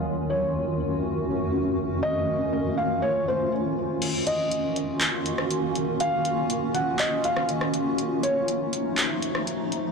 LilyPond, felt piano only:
\new Staff \with { instrumentName = "Felt piano" } { \time 4/4 \key ees \dorian \tempo 4 = 121 r8 des''2.~ des''8 | ees''4. f''8 des''8 c''8 r4 | r8 ees''2.~ ees''8 | f''4. ges''8 ees''8 f''8 r4 |
r8 des''2.~ des''8 | }